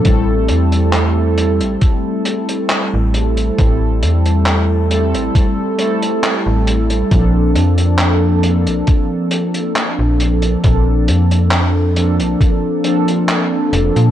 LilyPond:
<<
  \new Staff \with { instrumentName = "Analog polysynth" } { \time 4/4 \key a \phrygian \tempo 4 = 68 <g a c' e' a'>4. <g a c' e' a'>2~ <g a c' e' a'>8 | <g a c' e' a'>4. <g a c' e' a'>4 <g a c' e' a'>4. | <f bes c' d' a'>4. <f bes c' d' a'>2~ <f bes c' d' a'>8 | <f bes c' d' a'>4. <f bes c' d' a'>4 <f bes c' d' a'>4. | }
  \new Staff \with { instrumentName = "FM bass" } { \clef bass \time 4/4 \key a \phrygian a,,8 e,4~ e,16 a,,16 r4 r16 a,,8. | a,,8 e,4~ e,16 a,,16 r4 r16 a,,8. | bes,,8 f,4~ f,16 bes,,16 r4 r16 bes,,8. | bes,,8 f,4~ f,16 bes,,16 r4. f,,16 bes,16 | }
  \new DrumStaff \with { instrumentName = "Drums" } \drummode { \time 4/4 <hh bd>8 hh16 hh16 <hc hh>8 hh16 hh16 <hh bd>8 hh16 hh16 <hc hh>8 hh16 hh16 | <hh bd>8 hh16 hh16 <hc hh>8 hh16 hh16 <hh bd>8 hh16 hh16 <hc hh>8 hh16 hh16 | <hh bd>8 hh16 hh16 <hc hh>8 hh16 hh16 <hh bd>8 hh16 hh16 <hc hh>8 hh16 hh16 | <hh bd>8 hh16 hh16 <hc hh>8 hh16 hh16 <hh bd>8 hh16 hh16 <hc hh>8 hh16 hh16 | }
>>